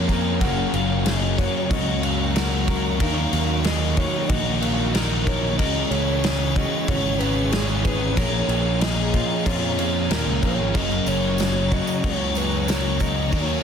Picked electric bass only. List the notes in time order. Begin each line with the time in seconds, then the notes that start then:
Already playing: F2
0.41 F#1
0.73 F#1
1.70 C#2
3.00 D#2
3.33 D#2
4.29 A#1
5.59 C#2
5.91 C#2
6.88 G#1
8.17 A#1
8.48 A#1
9.46 F2
10.11 D#2
10.27 C#2
10.43 A#1
10.59 G#1
10.74 F#1
11.07 F#1
12.04 C#2
13.33 D#2